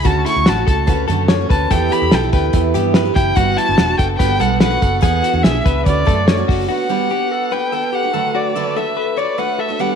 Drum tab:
HH |xxxxxxxx|xxxxxxxx|xxxxxxxx|xxxxxxxo|
SD |--o---o-|--o---o-|--o---o-|--o---o-|
BD |o--oo--o|o--oo--o|o--oo--o|o--ooo-o|

HH |--------|--------|
SD |--------|--------|
BD |--------|--------|